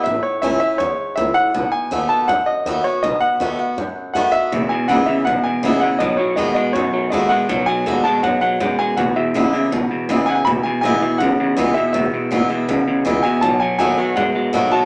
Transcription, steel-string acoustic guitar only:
\new Staff \with { instrumentName = "Steel-string acoustic guitar" } { \time 4/4 \key e \major \tempo 4 = 162 << { r4 <e a cis' e'>8 <cis' e'>8 r2 | r4 <dis a b fis'>4 r4 <dis a b fis'>8 <b fis'>8 | r4 <dis a b fis'>8 <b fis'>8 r4 <dis a b fis'>8 fis'8 | r4 <e gis b e'>8 <b e'>8 r4 <e gis b e'>8 <b e'>8 |
r4 <dis a b fis'>8 <b fis'>8 r4 <dis a b fis'>8 <b fis'>8 | r4 <dis a b fis'>8 <b fis'>8 r2 | r4 <e gis b e'>8 <b e'>8 r4 <e gis b e'>8 <b e'>8 | r4 <e gis b e'>8 <b e'>8 r4 <e gis b e'>8 <b e'>8 |
r4 <e gis b e'>8 <b e'>8 r4 <e gis b e'>8 <b e'>8 | r4 <dis a b fis'>8 <b fis'>8 r4 <dis a b fis'>8 <b fis'>8 | } \\ { a,2 gis,4 a,4 | b,2 fis,2 | b,2 fis,2 | e,2 b,2 |
b,2 fis,2 | b,2 gis,4 fis,4 | e,2 b,2 | e,2 b,2 |
e,2 b,2 | b,2 fis,2 | } >> }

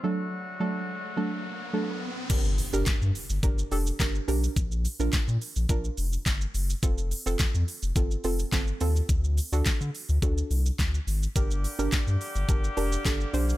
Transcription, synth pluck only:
\new Staff \with { instrumentName = "Synth pluck" } { \time 4/4 \key g \minor \tempo 4 = 106 <fis a d' a'>8 r8 <fis a d' a'>8 r8 <fis a d' a'>8 r8 <fis a d' a'>8 r8 | <d' g' bes'>8 r16 <d' g' bes'>8. r8 <d' g' bes'>16 r16 <d' g' a'>16 r16 <d' g' bes'>16 r16 <d' g' bes'>8 | r8. <d' f' bes'>8. r8 <d' f' bes'>4~ <d' f' bes'>16 r8. | <c' f' a'>8 r16 <c' f' a'>8. r8 <c' f' a'>16 r16 <c' f' a'>16 r16 <c' f' a'>16 r16 <c' f' a'>8 |
r8. <d' fis' a'>8. r8 <d' fis' a'>4~ <d' fis' a'>16 r8. | <d' g' bes'>8 r16 <d' g' bes'>8. r8 <d' g' bes'>16 r16 <d' g' bes'>16 r16 <d' g' a'>16 r16 <d' g' c''>8 | }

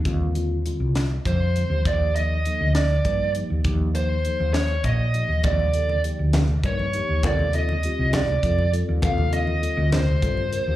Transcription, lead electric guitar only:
\new Staff \with { instrumentName = "Lead electric guitar" } { \time 6/8 \key ees \lydian \tempo 4. = 67 r2 c''4 | d''8 ees''4 d''4 r8 | r8 c''4 des''8 ees''4 | d''4 r4 des''4 |
d''8 ees''4 d''4 r8 | f''8 ees''4 c''4. | }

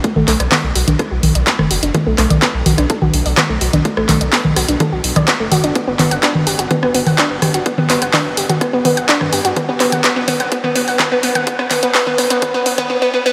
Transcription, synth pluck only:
\new Staff \with { instrumentName = "Synth pluck" } { \time 4/4 \key g \lydian \tempo 4 = 126 a16 a16 a16 d''16 b16 r16 fis'16 d'16 a'16 fis'16 r16 d''16 b16 a16 fis'16 d'16 | a16 a16 a16 d''16 b16 r16 fis'16 d'16 a'16 fis'16 r16 d''16 b16 a16 fis'16 d'16 | a16 a16 a16 d''16 b16 r16 fis'16 d'16 a'16 fis'16 r16 d''16 b16 a16 fis'16 d'16 | b16 b16 b16 fis''16 d'16 r16 g'16 fis'16 b16 b16 b16 fis''16 d'16 r16 g'16 fis'16 |
b16 b16 b16 fis''16 d'16 r16 g'16 fis'16 b16 b16 b16 fis''16 d'16 r16 g'16 fis'16 | b16 b16 b16 fis''16 b16 b16 b16 fis''16 b16 b16 b16 fis''16 b16 b16 b16 fis''16 | b16 b16 b16 b16 b16 b16 b16 b16 b16 b16 b16 b16 b16 b16 b16 b16 | }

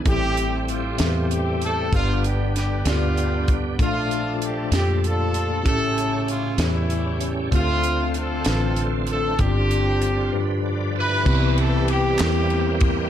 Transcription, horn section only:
\new Staff \with { instrumentName = "Horn section" } { \time 6/8 \key c \major \tempo 4. = 64 << { g'4 f'4 g'8 a'8 | f'8 g'8 g'8 f'4 r8 | f'4 g'8 g'8 a'4 | a'4 f'8 e'4 r8 |
f'4 a'4. a'8 | g'2 r8 b'8~ | b'8 a'8 g'8 g'4 r8 | } \\ { <c' e'>4 c'4. r8 | <b d'>4. <b d'>4. | <a d'>4. r8 <d' f'>4 | <cis' e'>4. <g cis'>4. |
<a c'>4 <c' f'>4. r8 | <c' d'>2 r8 <e' g'>8~ | <e' g'>4 r8 <bes c'>4. | } >> }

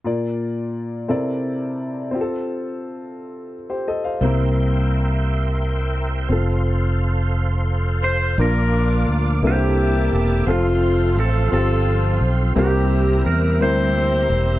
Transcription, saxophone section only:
\new Staff \with { instrumentName = "Saxophone section" } { \time 6/8 \key bes \major \tempo 4. = 57 << { r2. | r2. | r2. | r2 r8 c''8 |
bes'4 r8 g'4. | f'4 a'8 a'4 r8 | g'4 bes'8 c''4. | } \\ { r2. | r2. | r2. | r2. |
<d' f'>4. <bes e'>4. | <a c'>4. <c' f'>4. | <bes e'>4. <e' g'>4. | } >> }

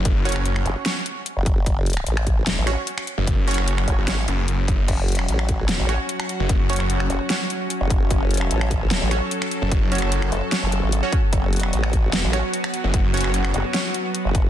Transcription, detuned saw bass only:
\new Staff \with { instrumentName = "Detuned saw bass" } { \clef bass \time 4/4 \key fis \minor \tempo 4 = 149 fis,,8. fis,,8. r2 r8 | r2 e,,16 r4. fis,,16~ | fis,,8. fis,,8. r16 fis,,16 r8 fis,,4. | r2 e,,16 r4. fis,,16~ |
fis,,8. fis,,8. r2 r8 | r2 e,,16 r4. fis,,16~ | fis,,8. fis,,8. r2 r8 | r2 e,,16 r4. fis,,16~ |
fis,,8. fis,,8. r2 r8 | }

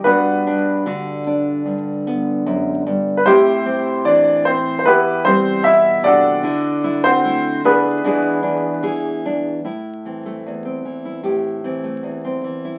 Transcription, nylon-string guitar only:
\new Staff \with { instrumentName = "Nylon-string guitar" } { \time 4/4 \key g \major \tempo 4 = 75 << { <g fis'>8 d'8 fis'8 d'4 b4. | g'8 c'4 r4 g4. | e'8 e'8 e'8 e'8 <e gis d' gis'>8 d'8 gis'8 d'8 | \key a \minor e'8 c'16 a8 c'8 e'16 g'8 c'16 a8 c'8 e'16 | } \\ { g,4 d4 g,4 fis,8 g,8 | a,4 e4 e,4 b,8 c8 | d4 a4 e,4 e4 | a,8 e8 e,8 e8 a,8 e8 e,8 e8 | } >> }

